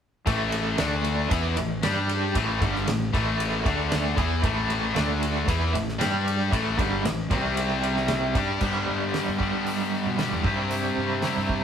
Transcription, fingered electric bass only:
0.27 A1
0.80 D2
1.31 E2
1.58 A1
1.85 G2
2.35 A1
2.61 G1
2.87 A1
3.14 A1
3.66 D2
4.18 E2
4.44 A1
4.96 D2
5.48 E2
5.74 A1
6.00 G2
6.52 A1
6.79 G1
7.05 A1
7.31 C2
8.35 G2
8.62 G2
8.89 G2
9.29 G2
10.06 B2
10.20 B2
10.33 E2
10.44 G2
10.98 G2
11.37 G2

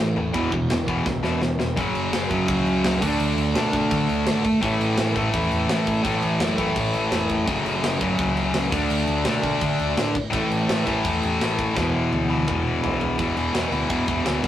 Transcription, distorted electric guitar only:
0.00 A2 E3
0.16 A2 E3
0.34 E2 B2 E3
0.53 E2 B2
0.70 E2 B2
0.88 E2 B2 E3
1.06 E2 B2
1.23 E2 B2 E3
1.41 E2 B2
1.59 E2 B2
1.76 F#2 C#3 F#3
2.29 F#2 C#3 F#3
3.01 D3 A3 D4
3.55 D3 A3 D4
4.61 A2 E3 A3
5.15 A2 E3 A3
6.03 A2 E3 A3
6.57 A2 E3 A3
7.47 F#2 C#3 F#3
8.00 F#2 C#3 F#3
8.71 D3 A3 D4
9.25 D3 A3 D4
10.30 A2 E3 A3
10.86 A2 E3 A3
11.75 E2 B2 E3
12.30 E2 B2 E3
13.19 E2 B2 E3
13.37 E2 B2 E3
13.54 E2 B2 E3
13.71 E2 B2 E3
13.90 E2 B2 E3
14.07 E2 B2 E3
14.25 E2 B2 E3
14.43 E2 B2 E3

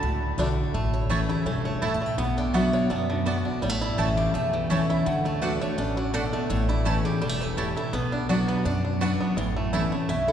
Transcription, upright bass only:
0.02 C#2
0.38 B1
0.74 A1
1.46 E1
2.18 B1
2.90 F#2
3.62 A1
3.98 A1
4.34 B1
4.70 C#2
5.06 D2
5.78 A1
6.50 A1
7.21 E1
7.93 B1
8.65 F#2
9.37 A1
10.09 B1

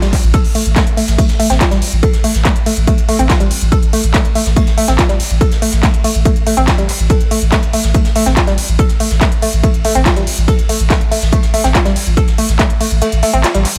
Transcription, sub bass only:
0.02 A1
0.23 A1
0.45 A1
0.66 A1
0.87 A1
1.08 A1
1.29 A1
1.50 A1
1.71 A1
1.92 A1
2.13 A1
2.35 A1
2.56 A1
2.77 A1
2.98 A1
3.19 A1
3.40 A1
3.61 A1
3.82 A1
4.04 A1
4.25 A1
4.46 A1
4.67 A1
4.88 A1
5.09 A1
5.30 A1
5.52 A1
5.73 A1
5.94 A1
6.15 A1
6.36 A1
6.57 A1
6.78 A1
7.00 A1
7.21 A1
7.42 A1
7.63 A1
7.84 A1
8.05 A1
8.26 A1
8.47 A1
8.69 A1
8.90 A1
9.11 A1
9.32 A1
9.53 A1
9.74 A1
9.95 A1
10.16 A1
10.38 A1
10.59 A1
10.80 A1
11.01 A1
11.22 A1
11.43 A1
11.64 A1
11.85 A1
12.06 A1
12.28 A1
12.49 A1
12.70 A1
12.91 A1
13.12 A1
13.33 A1
13.54 A1

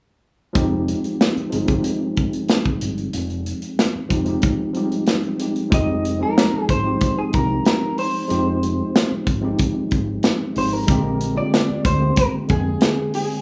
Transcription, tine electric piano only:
0.53 F3 G#3 C4 D#4
0.57 G4
1.50 F3 G#3 C4 D#4
1.54 G#4
1.66 F3 G#3 C4 D#4
1.70 G4
4.09 F3 G#3 C4 D#4 G4
4.25 F3 G#3 C4 D#4 G4
4.73 F3 G3 C4 D#4 G4
4.80 G#3
5.38 F3 G#3 C4 D#4
5.42 G4
5.70 F3 G#3 C4 D#4 G4
6.18 F3 G#3 C4 D#4
6.22 F#4
6.29 G4
6.83 F3 G#3 C4 D#4 G4
7.31 F3 G#3 C4 D#4
7.35 G4
8.28 F3 G#3 C4 D#4 G4
9.41 F3 G#3 C4 D#4 G4
10.53 F3 G#3 C4 D#4
10.57 G4
10.86 D3 G#3 A#3 C4
10.90 G4
11.35 D3 G#3 A#3 C4
11.39 F4
11.45 G4
11.98 D3 G#3 A#3 C4 G4
12.47 D3 G#3 A#3 C4 G5

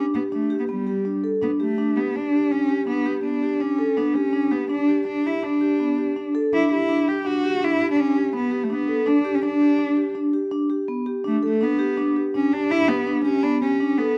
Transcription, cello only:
0.15 B3
0.33 A3
0.60 B3
0.69 G3
1.43 B3
1.61 A3
1.97 B3
2.16 D4
2.51 C#4
2.88 B3
3.25 D4
3.61 C#4
3.97 B3
4.14 C#4
4.51 B3
4.71 D4
5.07 D4
5.26 E4
5.44 D4
6.53 E4
6.72 E4
7.08 G4
7.25 F#4
7.64 E4
7.91 D4
8.00 C#4
8.36 B3
8.64 A3
8.73 B3
9.08 D4
9.35 C#4
9.45 D4
11.27 A3
11.46 A3
11.63 B3
12.36 C#4
12.53 D4
12.71 E4
12.88 B3
13.25 C#4
13.43 D4
13.61 C#4
13.98 B3

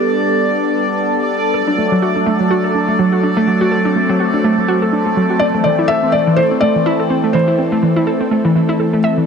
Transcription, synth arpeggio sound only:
1.54 A4
1.67 D4
1.78 A3
1.92 F#3
2.02 F#4
2.16 D4
2.26 A3
2.40 F#3
2.51 F#4
2.64 A4
2.75 D4
2.88 A3
2.99 F#3
3.13 F#4
3.23 D4
3.37 A3
3.47 F#3
3.61 F#4
3.72 A4
3.85 D4
3.96 A3
4.09 F#3
4.20 F#4
4.34 D4
4.44 A3
4.58 F#3
4.68 F#4
4.82 A4
4.93 D4
5.06 A3
5.17 F#3
5.30 F#4
5.41 C4
5.54 A3
5.65 E3
5.79 E4
5.89 A4
6.03 C4
6.13 A3
6.27 E3
6.38 E4
6.51 C4
6.62 A3
6.75 E3
6.86 E4
7.00 A4
7.10 C4
7.24 A3
7.34 E3
7.48 E4
7.59 C4
7.72 A3
7.83 E3
7.96 E4
8.07 A4
8.21 C4
8.31 A3
8.45 E3
8.56 E3
8.69 E4
8.80 A4
8.93 A3
9.04 E5
9.17 E3

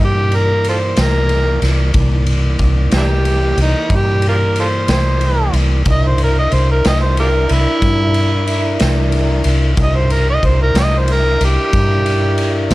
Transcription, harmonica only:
0.04 G4
0.36 A#4
0.69 F4 A4 C5
1.03 A#4
2.96 D4 E4 G4
3.62 D#4
3.95 G4
4.29 F4 G4 A#4
4.60 F4 A4 C5
4.92 C5
5.91 D#5
6.08 C5
6.24 A#4
6.39 D#5
6.54 C5
6.71 A#4
6.88 D#5
7.03 C5
7.20 F4 G4 A#4
7.53 E4
9.83 D#5
9.97 C5
10.12 A#4
10.30 D#5
10.46 C5
10.62 A#4
10.79 D#5
10.98 C5
11.13 A#4
11.45 G4

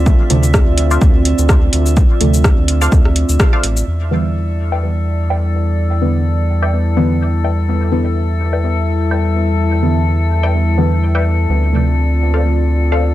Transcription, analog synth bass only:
Already playing: D2
0.30 D2
0.67 D2
1.02 D2
1.39 D2
1.73 D2
2.21 D2
2.58 D2
2.92 D2
3.29 D2
3.64 A1
3.87 E2
11.49 D2

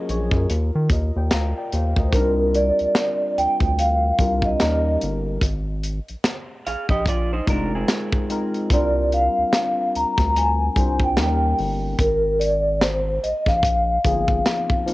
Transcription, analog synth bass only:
0.09 A#1
0.32 F#2
0.50 D#2
0.75 D#3
0.91 D#2
1.16 D#2
1.33 D2
1.73 D#2
1.97 D2
2.14 C2
2.80 D2
3.38 D2
3.61 D2
4.19 C2
4.62 D#2
5.03 G1
5.42 G#1
6.10 A#1
6.67 A#1
6.90 A#1
7.49 F1
8.71 C2
9.38 D2
9.96 D2
10.19 D2
10.77 C2
11.18 D#2
11.59 G1
12.00 G#1
13.24 A#1
13.47 A#1
14.05 G1

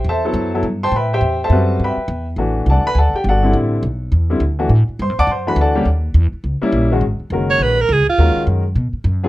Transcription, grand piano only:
0.09 A4 C5 E5 A5
0.25 F#3 B3 E4 A4
0.55 F#3 B3 E4 A4
0.83 C5 G5 A5 C6
0.96 B4 E5 G5 B5
1.13 G4 C5 E5 G5
1.44 A4 C5 E5 A5
1.52 G3 C4 F#4 B4
1.84 B4 E5 G5 B5
2.38 E3 A3 D4 F#4
2.70 A4 D5 F#5 A5
2.87 B4 B5
2.94 G#5
2.98 A4 D5 F#5 A5
3.15 G4 G5
3.29 F#4 A4 D5 F#5
3.43 D3 G3 C4 E4
4.30 D3 G3 C4 E4
4.59 E3 A3 D4 F#4
5.02 C5 C6
5.19 D5 F#5 A5 D6
5.31 C5 C6
5.47 E3 A3 D4 F#4 B4 B5
5.61 A4 D5 F#5 A5
5.75 G3 A#3 C#4 G4
6.62 G3 A#3 C#4 E4
6.92 D#3 G#3 C#4 F#4
7.32 D#3 G#3 C#4 F#4 A#4
8.18 D#3 G#3 C#4 F#4 A#4
9.23 C#3 F#3 B3 F4 G#4

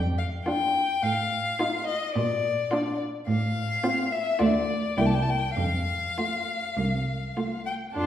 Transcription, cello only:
Already playing: F2
1.03 A2
2.15 A#2
3.27 A2
4.40 D2
4.97 C2
5.57 F2
6.77 C2
7.95 F2

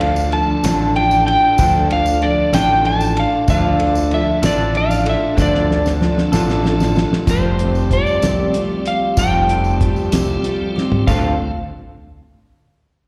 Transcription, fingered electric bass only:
Already playing: D2
0.64 A1
1.59 D2
2.53 A1
3.48 D2
4.43 A1
5.37 D2
6.32 A1
7.27 F1
8.23 C2
9.17 F1
10.13 C2
11.07 D2

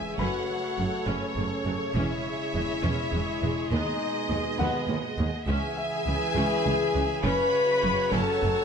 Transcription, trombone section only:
Already playing: E3 G#3
0.19 C#3 A3
1.95 G#3
3.71 B2
5.48 C#3 E3
7.24 F#3

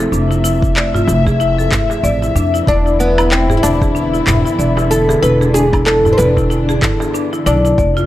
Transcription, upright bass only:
0.12 F1
1.08 F1
2.03 A1
2.35 F2
2.67 E1
3.63 E1
4.27 E1
4.59 E1
5.23 E1
6.18 E1
7.46 B1
7.78 F1

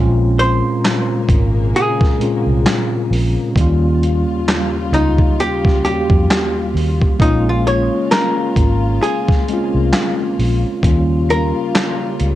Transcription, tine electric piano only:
Already playing: A#2 G#3 C4 C#4 F4
2.19 A#2 G#3 C4 C#4
2.23 F4
3.56 D#2 G3 A#3 C#4
3.61 F4
5.84 D#2 G3 A#3 C#4
5.88 F#4
5.94 G4
7.19 G#3 A#3 C#4
7.23 F4
9.49 G#3 C4 C#4 F4
10.83 G3 A#3 C#4 F4

